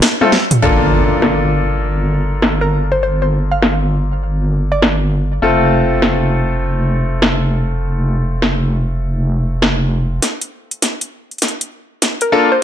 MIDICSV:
0, 0, Header, 1, 6, 480
1, 0, Start_track
1, 0, Key_signature, -2, "minor"
1, 0, Tempo, 600000
1, 501, Time_signature, 4, 2, 24, 8
1, 10106, End_track
2, 0, Start_track
2, 0, Title_t, "Synth pluck"
2, 0, Program_c, 0, 84
2, 2091, Note_on_c, 0, 70, 89
2, 2224, Note_off_c, 0, 70, 0
2, 2333, Note_on_c, 0, 72, 89
2, 2404, Note_off_c, 0, 72, 0
2, 2424, Note_on_c, 0, 72, 87
2, 2519, Note_off_c, 0, 72, 0
2, 2576, Note_on_c, 0, 72, 80
2, 2631, Note_off_c, 0, 72, 0
2, 2812, Note_on_c, 0, 77, 86
2, 2869, Note_off_c, 0, 77, 0
2, 2899, Note_on_c, 0, 77, 72
2, 2997, Note_off_c, 0, 77, 0
2, 3774, Note_on_c, 0, 74, 86
2, 4402, Note_off_c, 0, 74, 0
2, 9774, Note_on_c, 0, 70, 90
2, 9906, Note_off_c, 0, 70, 0
2, 10015, Note_on_c, 0, 72, 93
2, 10084, Note_off_c, 0, 72, 0
2, 10106, End_track
3, 0, Start_track
3, 0, Title_t, "Grand piano"
3, 0, Program_c, 1, 0
3, 170, Note_on_c, 1, 57, 79
3, 170, Note_on_c, 1, 65, 71
3, 171, Note_on_c, 1, 60, 74
3, 171, Note_on_c, 1, 69, 88
3, 243, Note_off_c, 1, 57, 0
3, 243, Note_off_c, 1, 60, 0
3, 243, Note_off_c, 1, 65, 0
3, 243, Note_off_c, 1, 69, 0
3, 498, Note_on_c, 1, 62, 69
3, 499, Note_on_c, 1, 58, 73
3, 499, Note_on_c, 1, 65, 66
3, 499, Note_on_c, 1, 69, 81
3, 4318, Note_off_c, 1, 62, 0
3, 4319, Note_off_c, 1, 58, 0
3, 4319, Note_off_c, 1, 65, 0
3, 4319, Note_off_c, 1, 69, 0
3, 4337, Note_on_c, 1, 57, 72
3, 4337, Note_on_c, 1, 69, 80
3, 4338, Note_on_c, 1, 60, 68
3, 4338, Note_on_c, 1, 65, 69
3, 8158, Note_off_c, 1, 57, 0
3, 8158, Note_off_c, 1, 60, 0
3, 8158, Note_off_c, 1, 65, 0
3, 8158, Note_off_c, 1, 69, 0
3, 9858, Note_on_c, 1, 62, 85
3, 9858, Note_on_c, 1, 65, 87
3, 9858, Note_on_c, 1, 69, 104
3, 9859, Note_on_c, 1, 58, 95
3, 9982, Note_off_c, 1, 62, 0
3, 9982, Note_off_c, 1, 65, 0
3, 9982, Note_off_c, 1, 69, 0
3, 9983, Note_off_c, 1, 58, 0
3, 10106, End_track
4, 0, Start_track
4, 0, Title_t, "Wobble bass"
4, 0, Program_c, 2, 39
4, 501, Note_on_c, 2, 31, 88
4, 4323, Note_off_c, 2, 31, 0
4, 4337, Note_on_c, 2, 29, 86
4, 8161, Note_off_c, 2, 29, 0
4, 10106, End_track
5, 0, Start_track
5, 0, Title_t, "Impact"
5, 0, Program_c, 3, 103
5, 500, Note_on_c, 3, 60, 69
5, 2420, Note_off_c, 3, 60, 0
5, 10106, End_track
6, 0, Start_track
6, 0, Title_t, "Drums"
6, 17, Note_on_c, 9, 38, 110
6, 17, Note_on_c, 9, 42, 51
6, 97, Note_off_c, 9, 38, 0
6, 97, Note_off_c, 9, 42, 0
6, 169, Note_on_c, 9, 48, 53
6, 249, Note_off_c, 9, 48, 0
6, 259, Note_on_c, 9, 38, 79
6, 339, Note_off_c, 9, 38, 0
6, 408, Note_on_c, 9, 42, 69
6, 408, Note_on_c, 9, 45, 83
6, 488, Note_off_c, 9, 42, 0
6, 488, Note_off_c, 9, 45, 0
6, 978, Note_on_c, 9, 38, 108
6, 1058, Note_off_c, 9, 38, 0
6, 1939, Note_on_c, 9, 38, 107
6, 2019, Note_off_c, 9, 38, 0
6, 2900, Note_on_c, 9, 38, 114
6, 2980, Note_off_c, 9, 38, 0
6, 3859, Note_on_c, 9, 38, 113
6, 3939, Note_off_c, 9, 38, 0
6, 4818, Note_on_c, 9, 38, 118
6, 4898, Note_off_c, 9, 38, 0
6, 5777, Note_on_c, 9, 38, 117
6, 5857, Note_off_c, 9, 38, 0
6, 6738, Note_on_c, 9, 38, 110
6, 6818, Note_off_c, 9, 38, 0
6, 7698, Note_on_c, 9, 38, 114
6, 7778, Note_off_c, 9, 38, 0
6, 8180, Note_on_c, 9, 38, 47
6, 8180, Note_on_c, 9, 42, 75
6, 8260, Note_off_c, 9, 38, 0
6, 8260, Note_off_c, 9, 42, 0
6, 8332, Note_on_c, 9, 42, 51
6, 8412, Note_off_c, 9, 42, 0
6, 8571, Note_on_c, 9, 42, 37
6, 8651, Note_off_c, 9, 42, 0
6, 8659, Note_on_c, 9, 38, 47
6, 8659, Note_on_c, 9, 42, 78
6, 8739, Note_off_c, 9, 38, 0
6, 8739, Note_off_c, 9, 42, 0
6, 8810, Note_on_c, 9, 42, 54
6, 8890, Note_off_c, 9, 42, 0
6, 9051, Note_on_c, 9, 42, 17
6, 9107, Note_off_c, 9, 42, 0
6, 9107, Note_on_c, 9, 42, 24
6, 9136, Note_off_c, 9, 42, 0
6, 9136, Note_on_c, 9, 38, 50
6, 9136, Note_on_c, 9, 42, 78
6, 9187, Note_off_c, 9, 42, 0
6, 9187, Note_on_c, 9, 42, 29
6, 9216, Note_off_c, 9, 38, 0
6, 9267, Note_off_c, 9, 42, 0
6, 9289, Note_on_c, 9, 42, 55
6, 9369, Note_off_c, 9, 42, 0
6, 9617, Note_on_c, 9, 38, 55
6, 9617, Note_on_c, 9, 42, 77
6, 9697, Note_off_c, 9, 38, 0
6, 9697, Note_off_c, 9, 42, 0
6, 9767, Note_on_c, 9, 42, 52
6, 9847, Note_off_c, 9, 42, 0
6, 10106, End_track
0, 0, End_of_file